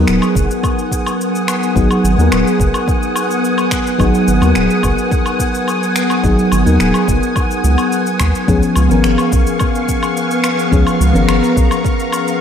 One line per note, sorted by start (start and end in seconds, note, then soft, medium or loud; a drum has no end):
0.00 1.75 F#3 medium
0.00 1.76 B3 medium
0.00 8.44 B3 medium
0.00 1.76 D#4 medium
0.00 1.76 G#4 medium
0.00 1.73 A#4 medium
0.00 8.44 F#5 medium
0.00 10.68 G#5 medium
0.00 8.44 D#6 medium
0.08 0.20 D#1 medium
0.08 finger snap medium
0.08 shaker soft
0.22 low woodblock medium
0.22 shaker soft
0.35 0.47 F#1 medium
0.35 kick loud
0.35 shaker medium
0.51 shaker soft
0.63 kick loud
0.63 low woodblock medium
0.63 shaker soft
0.79 shaker soft
0.92 kick medium
0.92 shaker medium
1.06 low woodblock medium
1.06 shaker soft
1.21 shaker soft
1.35 shaker soft
1.48 finger snap medium
1.48 low woodblock medium
1.48 shaker medium
1.63 shaker soft
1.75 1.88 G#1 loud
1.75 2.14 F#3 medium
1.75 2.14 B3 medium
1.75 2.14 D#4 medium
1.75 2.15 G#4 loud
1.75 kick loud
1.75 shaker soft
1.91 low woodblock medium
1.91 shaker soft
2.04 2.16 G#1 medium
2.04 shaker medium
2.18 2.29 D#2 loud
2.18 3.96 F#3 medium
2.18 3.97 B3 medium
2.18 3.97 D#4 medium
2.18 3.98 A#4 medium
2.18 shaker soft
2.32 2.44 D#1 medium
2.32 finger snap medium
2.32 low woodblock medium
2.32 shaker soft
2.47 shaker soft
2.59 2.72 F#1 medium
2.59 kick loud
2.59 shaker medium
2.74 low woodblock medium
2.74 shaker soft
2.88 kick loud
2.88 shaker soft
3.03 shaker soft
3.16 low woodblock medium
3.16 shaker medium
3.31 shaker soft
3.45 shaker soft
3.58 low woodblock medium
3.58 shaker soft
3.71 finger snap medium
3.71 kick medium
3.71 shaker medium
3.87 shaker soft
3.98 4.12 G#1 loud
3.98 4.38 F#3 medium
3.98 4.38 B3 medium
3.98 4.38 D#4 medium
3.98 4.39 G#4 loud
3.98 kick loud
3.98 low woodblock medium
3.98 shaker soft
4.15 shaker soft
4.28 4.40 G#1 loud
4.28 shaker medium
4.41 4.53 D#2 loud
4.41 6.20 F#3 medium
4.41 6.21 B3 medium
4.41 6.21 D#4 medium
4.41 6.22 A#4 medium
4.41 low woodblock medium
4.41 shaker soft
4.55 4.68 D#1 medium
4.55 finger snap medium
4.55 shaker soft
4.70 shaker soft
4.83 4.96 F#1 medium
4.83 kick loud
4.83 low woodblock medium
4.83 shaker medium
4.98 shaker soft
5.11 kick loud
5.11 shaker soft
5.26 low woodblock medium
5.26 shaker soft
5.39 kick medium
5.39 shaker medium
5.55 shaker soft
5.68 low woodblock medium
5.68 shaker soft
5.83 shaker soft
5.96 finger snap medium
5.96 shaker medium
6.10 low woodblock medium
6.10 shaker soft
6.23 6.36 G#1 loud
6.23 6.63 F#3 medium
6.23 6.63 B3 medium
6.23 6.63 D#4 medium
6.23 6.63 G#4 loud
6.23 kick loud
6.23 shaker soft
6.39 shaker soft
6.52 6.64 G#1 loud
6.52 low woodblock medium
6.52 shaker medium
6.65 6.78 D#2 loud
6.65 8.44 F#3 medium
6.65 8.44 B3 medium
6.65 8.45 D#4 medium
6.65 8.45 A#4 medium
6.65 shaker soft
6.80 6.92 D#1 medium
6.80 finger snap medium
6.80 shaker soft
6.94 low woodblock medium
6.94 shaker soft
7.08 7.20 F#1 medium
7.08 kick loud
7.08 shaker medium
7.23 shaker soft
7.36 kick loud
7.36 low woodblock medium
7.36 shaker soft
7.51 shaker soft
7.64 7.76 C#2 loud
7.64 shaker medium
7.78 low woodblock medium
7.78 shaker soft
7.92 shaker soft
8.07 shaker soft
8.20 8.32 D#2 medium
8.20 finger snap medium
8.20 kick medium
8.20 low woodblock medium
8.20 shaker medium
8.35 shaker soft
8.48 8.60 C#2 loud
8.48 8.87 F3 medium
8.48 8.87 B3 medium
8.48 12.41 B3 medium
8.48 8.87 C#4 medium
8.48 8.88 G#4 loud
8.48 12.41 F5 medium
8.48 12.41 C#6 medium
8.48 kick loud
8.48 shaker soft
8.63 shaker soft
8.76 8.88 C#2 loud
8.76 low woodblock medium
8.76 shaker medium
8.89 9.02 G#1 loud
8.89 10.68 F3 medium
8.89 10.69 B3 medium
8.89 10.69 C#4 medium
8.89 10.70 A#4 medium
8.89 shaker soft
9.04 9.16 G#1 medium
9.04 finger snap medium
9.04 shaker soft
9.18 low woodblock medium
9.18 shaker soft
9.32 9.45 B1 medium
9.32 kick loud
9.32 shaker medium
9.47 shaker soft
9.60 kick loud
9.60 low woodblock medium
9.60 shaker soft
9.75 shaker soft
9.89 kick medium
9.89 shaker medium
10.03 low woodblock medium
10.03 shaker soft
10.17 shaker soft
10.31 shaker soft
10.44 finger snap medium
10.44 low woodblock medium
10.44 shaker medium
10.59 shaker soft
10.71 10.84 C#2 loud
10.71 11.11 F3 medium
10.71 11.11 B3 medium
10.71 11.11 C#4 medium
10.71 11.12 G#4 loud
10.71 12.41 A#5 medium
10.71 kick loud
10.71 shaker soft
10.87 low woodblock medium
10.87 shaker soft
11.00 11.13 C#2 loud
11.00 shaker medium
11.13 11.26 G#1 loud
11.13 12.41 F3 medium
11.13 12.41 B3 medium
11.13 12.41 C#4 medium
11.13 12.41 A#4 medium
11.13 shaker soft
11.29 11.41 G#1 medium
11.29 finger snap medium
11.29 low woodblock medium
11.29 shaker soft
11.44 shaker soft
11.57 11.69 B1 medium
11.57 kick loud
11.57 shaker medium
11.71 low woodblock medium
11.71 shaker soft
11.85 kick loud
11.85 shaker soft
12.00 shaker soft
12.12 low woodblock medium
12.12 shaker medium
12.28 shaker soft